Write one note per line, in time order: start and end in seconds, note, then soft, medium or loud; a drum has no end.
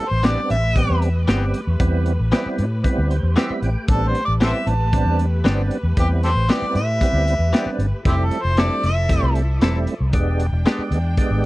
0.00 8.01 A3 medium
0.00 8.01 G4 medium
0.00 0.10 A4 medium
0.00 3.84 B4 medium
0.09 0.35 A1 medium
0.09 0.26 C5 medium
0.23 0.39 E3 medium
0.23 0.57 G3 medium
0.23 0.40 B3 medium
0.23 0.57 B3 medium
0.23 0.57 C4 medium
0.23 0.40 C4 medium
0.23 0.57 D4 medium
0.23 0.40 G4 medium
0.23 0.50 D5 medium
0.23 snare loud
0.23 closed hi-hat medium
0.50 0.86 A1 medium
0.50 0.99 E5 medium
0.50 closed hi-hat medium
0.76 1.09 G3 medium
0.76 1.09 B3 medium
0.76 1.09 C4 medium
0.76 1.09 G4 medium
0.76 kick medium
0.76 closed hi-hat medium
0.90 1.25 E2 medium
1.02 closed hi-hat medium
1.28 1.52 G1 medium
1.28 1.44 E3 medium
1.28 1.61 G3 medium
1.28 1.61 B3 medium
1.28 1.44 B3 medium
1.28 1.61 C4 medium
1.28 1.45 C4 medium
1.28 1.61 G4 medium
1.28 1.45 G4 medium
1.28 snare loud
1.28 closed hi-hat medium
1.54 closed hi-hat medium
1.67 1.79 E2 medium
1.80 2.16 E2 medium
1.80 2.13 G3 medium
1.80 2.13 B3 medium
1.80 2.13 C4 medium
1.80 2.13 E4 medium
1.80 kick loud
1.80 closed hi-hat medium
2.06 closed hi-hat medium
2.19 2.31 A1 medium
2.32 2.48 E3 medium
2.32 2.65 G3 medium
2.32 2.65 B3 medium
2.32 2.48 B3 medium
2.32 2.48 C4 medium
2.32 2.66 C4 medium
2.32 2.65 E4 medium
2.32 2.49 G4 medium
2.32 snare loud
2.32 closed hi-hat medium
2.46 muted fingered electric bass stroke soft
2.58 2.82 A2 medium
2.58 closed hi-hat medium
2.84 3.17 G3 medium
2.84 3.17 B3 medium
2.84 3.17 C4 medium
2.84 3.17 E4 loud
2.84 kick medium
2.84 closed hi-hat medium
2.98 3.22 D2 medium
3.10 3.35 C5 medium
3.10 closed hi-hat medium
3.23 3.35 E2 medium
3.36 3.52 E3 medium
3.36 3.70 G3 medium
3.36 3.52 B3 medium
3.36 3.70 B3 medium
3.36 3.53 C4 medium
3.36 3.70 C4 medium
3.36 3.70 E4 medium
3.36 3.53 G4 medium
3.36 3.61 E5 medium
3.36 snare medium
3.36 closed hi-hat medium
3.50 muted fingered electric bass stroke soft
3.62 3.75 A1 medium
3.62 3.88 G5 medium
3.62 closed hi-hat medium
3.88 4.12 A1 loud
3.88 4.22 G3 medium
3.88 4.22 B3 medium
3.88 4.22 C4 medium
3.88 4.22 D4 medium
3.88 4.09 A4 medium
3.88 8.01 B4 medium
3.88 kick loud
3.88 closed hi-hat medium
4.07 4.24 C5 medium
4.15 closed hi-hat medium
4.25 4.52 A1 medium
4.25 4.32 D5 medium
4.40 4.57 E3 medium
4.40 4.74 G3 medium
4.40 4.57 B3 medium
4.40 4.74 B3 medium
4.40 4.74 C4 medium
4.40 4.57 C4 medium
4.40 4.74 E4 medium
4.40 4.57 G4 medium
4.40 4.50 A4 medium
4.40 4.52 C5 medium
4.40 4.70 E5 medium
4.40 snare loud
4.40 closed hi-hat medium
4.67 5.03 A1 medium
4.67 5.20 A5 medium
4.67 closed hi-hat medium
4.93 5.26 G3 medium
4.93 5.26 B3 medium
4.93 5.26 C4 medium
4.93 5.26 D4 medium
4.93 kick medium
4.93 closed hi-hat medium
5.05 5.41 E2 medium
5.19 closed hi-hat medium
5.44 5.69 G1 medium
5.44 5.61 E3 medium
5.44 5.78 G3 medium
5.44 5.78 B3 medium
5.44 5.61 B3 medium
5.44 5.78 C4 medium
5.44 5.61 C4 medium
5.44 5.78 D4 medium
5.44 5.61 G4 medium
5.44 snare loud
5.44 closed hi-hat medium
5.71 closed hi-hat medium
5.83 5.96 E2 medium
5.97 6.33 E2 medium
5.97 6.30 G3 medium
5.97 6.30 B3 medium
5.97 6.30 C4 medium
5.97 6.30 E4 medium
5.97 6.07 G4 medium
5.97 kick loud
5.97 closed hi-hat medium
6.23 6.31 G4 medium
6.23 6.32 A4 medium
6.23 6.52 C5 medium
6.23 closed hi-hat medium
6.35 6.48 A1 medium
6.49 6.65 E3 medium
6.49 6.82 G3 medium
6.49 6.65 B3 medium
6.49 6.82 B3 medium
6.49 6.82 C4 medium
6.49 6.65 C4 medium
6.49 6.82 E4 medium
6.49 6.66 G4 medium
6.49 6.75 D5 loud
6.49 snare loud
6.49 closed hi-hat medium
6.62 muted fingered electric bass stroke soft
6.75 6.99 A2 medium
6.75 7.76 E5 loud
6.75 closed hi-hat medium
7.01 7.35 G3 medium
7.01 7.35 B3 medium
7.01 7.35 C4 medium
7.01 7.35 E4 medium
7.01 kick medium
7.01 closed hi-hat medium
7.13 7.37 D2 medium
7.28 closed hi-hat medium
7.39 7.51 E2 medium
7.53 7.69 E3 medium
7.53 7.86 G3 medium
7.53 7.69 B3 medium
7.53 7.87 B3 medium
7.53 7.70 C4 medium
7.53 7.87 C4 medium
7.53 7.87 D4 medium
7.53 7.70 G4 medium
7.53 snare loud
7.53 closed hi-hat medium
7.66 muted fingered electric bass stroke soft
7.78 7.91 G1 medium
7.78 closed hi-hat medium
8.05 8.29 F1 loud
8.05 10.12 F3 medium
8.05 8.39 G3 medium
8.05 8.39 A3 medium
8.05 8.39 C4 medium
8.05 8.15 C4 medium
8.05 10.12 E4 medium
8.05 8.39 E4 medium
8.05 8.14 E4 medium
8.05 8.26 G4 medium
8.05 10.11 A4 medium
8.05 kick loud
8.05 closed hi-hat medium
8.25 8.44 A4 medium
8.31 closed hi-hat medium
8.42 8.68 F1 medium
8.42 8.60 C5 medium
8.57 8.73 E3 medium
8.57 8.90 G3 medium
8.57 8.91 A3 medium
8.57 8.90 C4 medium
8.57 8.74 C4 medium
8.57 8.91 D4 medium
8.57 8.74 E4 medium
8.57 8.74 A4 medium
8.57 8.84 D5 medium
8.57 snare loud
8.57 closed hi-hat medium
8.83 9.19 F1 medium
8.83 9.33 E5 medium
8.83 closed hi-hat medium
9.09 9.43 G3 medium
9.09 9.43 A3 medium
9.09 9.43 C4 medium
9.09 9.43 E4 medium
9.09 kick medium
9.09 closed hi-hat medium
9.23 9.58 C2 medium
9.35 closed hi-hat medium
9.61 9.85 E1 medium
9.61 9.77 E3 medium
9.61 9.94 G3 medium
9.61 9.94 A3 medium
9.61 9.94 C4 medium
9.61 9.78 C4 medium
9.61 9.95 E4 medium
9.61 9.78 E4 loud
9.61 9.78 A4 loud
9.61 snare loud
9.61 closed hi-hat medium
9.87 closed hi-hat medium
10.00 10.12 C2 medium
10.13 10.49 E1 loud
10.13 11.46 G#3 medium
10.13 10.47 G#3 medium
10.13 10.47 B3 medium
10.13 11.46 D4 medium
10.13 10.47 D4 medium
10.13 10.47 G4 medium
10.13 11.46 G5 medium
10.13 kick loud
10.13 closed hi-hat medium
10.40 closed hi-hat medium
10.52 10.64 E1 medium
10.66 10.81 G#3 medium
10.66 10.99 G#3 medium
10.66 10.99 B3 medium
10.66 10.82 B3 medium
10.66 10.82 D4 medium
10.66 10.99 D4 medium
10.66 10.99 G4 medium
10.66 10.82 G4 medium
10.66 snare loud
10.66 closed hi-hat medium
10.79 muted fingered electric bass stroke soft
10.91 11.15 E2 medium
10.91 closed hi-hat medium
11.17 11.46 G#3 medium
11.17 11.46 B3 medium
11.17 11.46 D4 medium
11.17 11.46 G4 loud
11.17 kick medium
11.17 closed hi-hat medium
11.30 11.46 G#1 medium